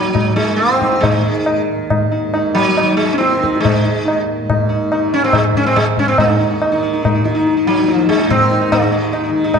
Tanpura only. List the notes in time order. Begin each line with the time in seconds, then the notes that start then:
Already playing: D#2 G#2 D#3
0.13 G#2
0.67 D#3
1.22 D#3
1.75 D#2
2.27 G#2
2.81 D#3
3.36 D#3
3.87 D#2
4.42 G#2
4.95 D#3
5.47 D#3
6.00 D#2
6.17 G#2
6.72 D#3
7.24 D#3
7.75 D#2
8.27 G#2
8.80 D#3
9.31 D#3